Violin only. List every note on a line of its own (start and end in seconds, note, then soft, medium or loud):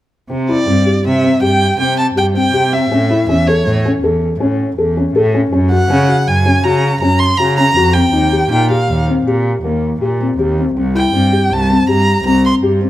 0.50 1.01 D5 medium
1.07 1.41 E5 medium
1.43 1.77 G5 medium
1.80 1.97 G5 medium
1.98 2.06 A5 medium
2.18 2.26 G5 medium
2.37 2.74 G5 medium
2.73 3.28 E5 medium
3.29 3.49 E5 medium
3.47 3.85 C#5 medium
5.72 6.29 F#5 medium
6.27 6.65 G#5 medium
6.64 7.00 A#5 medium
7.01 7.20 A#5 medium
7.19 7.39 C6 medium
7.37 7.56 A#5 medium
7.57 7.95 A#5 medium
7.94 8.51 G5 medium
8.52 8.69 G5 medium
8.71 9.06 F5 medium
10.96 11.54 G5 medium
11.53 11.89 A5 medium
11.90 12.24 A#5 medium
12.27 12.44 A#5 medium
12.46 12.54 C6 medium